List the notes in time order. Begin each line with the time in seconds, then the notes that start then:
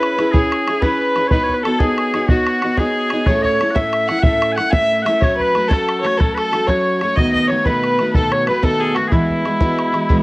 Already playing: C#4 E4 G#4 B4 C#5
0.03 bodhran
0.18 C#4 E4 G#4 C#5, bodhran
0.32 C#4 E4 G#4 C#5, bodhran
0.52 bodhran
0.68 C#4 E4 G#4 C#5, bodhran
0.81 C#4 E4 G#4 B4 C#5, bodhran
1.16 C#4 E4 G#4 C#5, bodhran
1.27 B4 C#5, bodhran
1.32 B3 D#4 F#4 C#5
1.43 C#5
1.49 bodhran
1.54 B4
1.63 B3 D#4 F#4 A4, bodhran
1.68 C#5
1.79 B3 D#4 F#4 G#4 C#5, bodhran
1.98 bodhran
2.14 B3 D#4 F#4 C#5, bodhran
2.29 B3 D#4 F#4 C#5, bodhran
2.47 bodhran
2.62 B3 D#4 F#4 C#5, bodhran
2.77 B3 D#4 F#4 G#4 C#5, bodhran
3.10 B3 D#4 F#4, bodhran
3.15 C#5
3.26 A2 A3 C#4 E4 A4 C#5, bodhran
3.42 C#5 D#5, bodhran
3.60 A3 C#4 E4 A4, bodhran
3.71 F#5
3.75 A2 A3 C#4 E4 A4 E5, bodhran
3.93 bodhran
4.08 A3 C#4 E4 A4 F#5, bodhran
4.19 E5 F#5, bodhran
4.24 A2 A3 C#4 E4 A4 E5
4.42 bodhran
4.52 G#5
4.57 A3 C#4 E4 F#5, bodhran
4.61 A4
4.70 A2 E5 G#5, bodhran
4.74 A3 C#4 E4 A4
5.02 A3 E5 F#5, bodhran
5.07 C#4 E4 A4
5.21 F#3 A3 C#4 F#4 C#5, bodhran
5.37 B4, bodhran
5.54 F#3 A3 C#4 F#4, bodhran
5.68 F#3 A3 C#4 F#4 A4 C#5, bodhran
5.73 A4
5.89 bodhran
6.01 F#3 A3 C#4 C#5, bodhran
6.06 F#4 C#5
6.17 F#3 A3 C#4 F#4 A4, bodhran
6.35 A4 B4, bodhran
6.52 F#3 A3 C#4 F#4, bodhran
6.67 F#3 A3 C#4 F#4 C#5, bodhran
7.01 F#3 A3 C#4 F#4 C#5, bodhran
7.16 B2 D#3 A3 B3 F#4 D#5, bodhran
7.33 D#5, bodhran
7.47 D#3 B3 C#5, bodhran
7.52 A3 F#4
7.65 B2 D#3 A3 B3 F#4 B4, bodhran
7.84 bodhran
7.99 D#3 A3 B3 F#4, bodhran
8.14 B2 D#3 A3 B3 F#4 A4, bodhran
8.32 C#5, bodhran
8.47 D#3 A3 B3 F#4 B4, bodhran
8.62 B2 D#3 A3 B3 F#4 A4, bodhran
8.80 G#4
8.94 D#3 A3 B3 F#4, bodhran
9.08 E3 E4 G#4
9.12 G#3 B3 E4 F#4, bodhran
9.29 bodhran
9.45 E3 G#3 B3 F#4, bodhran
9.60 E3 G#3 B3 F#4, bodhran
9.79 bodhran
9.93 E3 G#3 B3 F#4, bodhran
10.09 E3 G#3 B3 F#4, bodhran